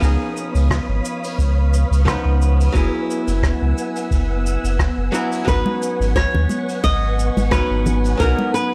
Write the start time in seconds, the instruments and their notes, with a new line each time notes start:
Already playing: synth texture B3 B6, string machine D#6
0.00 sub bass C#2, hollow-body jazz guitar F3 B3 C#4 D#4, string machine C#5 F5 B5, kick, open hi-hat, cabasa
0.05 hollow-body jazz guitar G#4
0.37 cabasa
0.55 sub bass C#2, open hi-hat, cabasa
0.70 kick, cross-stick, open hi-hat, cabasa
0.89 sub bass G#1
1.05 cabasa
1.24 open hi-hat, cabasa
1.38 sub bass C#2, kick, open hi-hat, cabasa
1.74 cabasa
1.91 sub bass C#2, open hi-hat, cabasa
2.05 hollow-body jazz guitar F3 B3 C#4 D#4 B4, kick, cross-stick, open hi-hat, cabasa
2.25 sub bass C#2
2.42 cabasa
2.60 open hi-hat, cabasa
2.72 sub bass F#1, hollow-body jazz guitar F#3 B3 C#4, string machine B3 F#5 G#5 E6, kick, open hi-hat, cabasa
2.76 hollow-body jazz guitar E4 G#4
3.10 cabasa
3.27 sub bass F#1, open hi-hat, cabasa
3.43 kick, cross-stick, open hi-hat, cabasa
3.62 sub bass C#2
3.78 cabasa
3.96 open hi-hat, cabasa
4.11 sub bass F#1, kick, open hi-hat, cabasa
4.46 cabasa
4.64 sub bass F#1, open hi-hat, cabasa
4.79 kick, cross-stick, open hi-hat, cabasa
4.98 sub bass F#1
5.12 hollow-body jazz guitar F#3 B3 C#4 E4 F#4, cabasa
5.32 open hi-hat, cabasa
5.45 sub bass G#1, hollow-body jazz guitar F#3 B3 C#4 D#4, nylon-string guitar B4, string machine F#5 G#5 C#6, kick, open hi-hat, cabasa
5.50 hollow-body jazz guitar B4
5.66 high conga
5.82 cabasa
6.00 sub bass G#1, open hi-hat, cabasa
6.15 nylon-string guitar C#5, kick, cross-stick, open hi-hat, cabasa
6.34 sub bass D#2, low conga
6.49 high conga, cabasa
6.69 open hi-hat, cabasa
6.84 sub bass G#1, nylon-string guitar D#5, kick, open hi-hat, cabasa
7.19 cabasa
7.37 sub bass G#1, open hi-hat, high conga, cabasa
7.51 hollow-body jazz guitar F#3 B3 C#4 D#4 C#5, nylon-string guitar B4, kick, cross-stick, open hi-hat, cabasa
7.71 sub bass G#1
7.86 low conga, cabasa
8.04 open hi-hat, cabasa
8.17 sub bass B1, hollow-body jazz guitar F#3 B3 C#4 D#4, nylon-string guitar A#4, string machine D#6, kick, open hi-hat, cabasa
8.23 hollow-body jazz guitar F#4
8.39 high conga
8.54 nylon-string guitar B4, cabasa